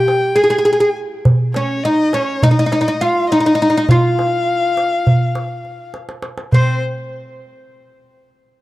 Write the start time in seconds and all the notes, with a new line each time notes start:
Already playing: G4 G5
0.08 darbuka tek
0.36 G#4 G#5, darbuka ka
0.44 G#4
0.50 G#4
0.58 G#4
0.65 G#4, darbuka ka
0.73 G#4
0.80 G#4
0.96 darbuka ka
1.25 darbuka dum
1.54 C#4 C#5, darbuka tek
1.84 D#4 D#5
1.99 darbuka ka
2.13 C#4 C#5, darbuka tek
2.42 D#4 D#5, darbuka dum
2.51 D#4
2.59 D#4
2.66 D#4
2.72 D#4, darbuka tek
2.81 D#4
2.88 D#4
3.01 F4 F5, darbuka ka
3.29 D#4 D#5, darbuka ka
3.40 D#4
3.46 D#4
3.55 D#4
3.60 D#4, darbuka ka
3.70 D#4
3.77 D#4
3.88 F4 F5, darbuka dum
4.19 darbuka tek
4.77 darbuka tek
5.07 darbuka dum
5.35 darbuka tek
5.65 darbuka ka
5.94 darbuka tek
6.09 darbuka ka
6.22 darbuka tek
6.38 darbuka ka
6.52 C4 C5, darbuka dum